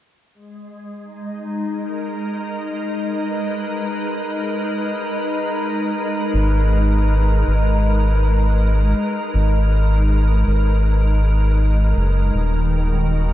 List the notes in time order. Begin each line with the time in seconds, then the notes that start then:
0.34 G#3
1.03 D#4
1.69 A#4
3.05 B4
6.34 G#1
7.47 G#1
9.34 G#1
10.47 G#1
11.97 F#1
12.34 D#1 D#3
12.75 F#4
13.16 A#3